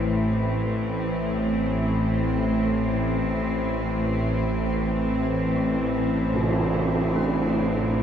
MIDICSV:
0, 0, Header, 1, 6, 480
1, 0, Start_track
1, 0, Key_signature, 0, "minor"
1, 0, Tempo, 500000
1, 7707, End_track
2, 0, Start_track
2, 0, Title_t, "Synth texture"
2, 0, Program_c, 0, 99
2, 26, Note_on_c, 0, 72, 74
2, 7707, Note_off_c, 0, 72, 0
2, 7707, End_track
3, 0, Start_track
3, 0, Title_t, "Bronze metallophone"
3, 0, Program_c, 1, 11
3, 5345, Note_on_c, 1, 57, 46
3, 6103, Note_on_c, 1, 52, 48
3, 6303, Note_off_c, 1, 57, 0
3, 6872, Note_on_c, 1, 62, 47
3, 7707, Note_off_c, 1, 52, 0
3, 7707, Note_off_c, 1, 62, 0
3, 7707, End_track
4, 0, Start_track
4, 0, Title_t, "Cello section"
4, 0, Program_c, 2, 48
4, 0, Note_on_c, 2, 45, 71
4, 0, Note_on_c, 2, 52, 61
4, 0, Note_on_c, 2, 60, 73
4, 7707, Note_off_c, 2, 45, 0
4, 7707, Note_off_c, 2, 52, 0
4, 7707, Note_off_c, 2, 60, 0
4, 7707, End_track
5, 0, Start_track
5, 0, Title_t, "Synth drone"
5, 0, Program_c, 3, 95
5, 29, Note_on_c, 3, 33, 71
5, 38, Note_on_c, 3, 45, 75
5, 7707, Note_off_c, 3, 33, 0
5, 7707, Note_off_c, 3, 45, 0
5, 7707, End_track
6, 0, Start_track
6, 0, Title_t, "Tam-tam"
6, 6086, Note_on_c, 9, 52, 69
6, 6182, Note_off_c, 9, 52, 0
6, 7707, End_track
0, 0, End_of_file